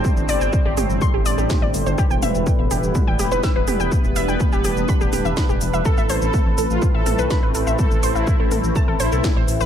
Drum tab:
HH |--o---o---o---o-|--o---o---o---o-|--o---o---o---o-|--o---o---o---o-|
SH |xxxxx-xxx-xxx-xx|xxxxx-xxx-xxx-xx|xxxxxxxxxxxxxxxx|xxxxx-xxx-xxx-xx|
SD |------------o---|------------o---|------------o---|------------o---|
T2 |o-----o-----o---|--o-----o-----o-|----o-----o-----|----o-----o-----|
BD |o---o---o---o---|o---o---o---o---|o---o---o---o---|o---o---o---o---|

HH |--o---o---o---o-|
SH |xxxxx-xxx-xxx-xx|
SD |------------o---|
T2 |o-----o-----o---|
BD |o---o---o---o---|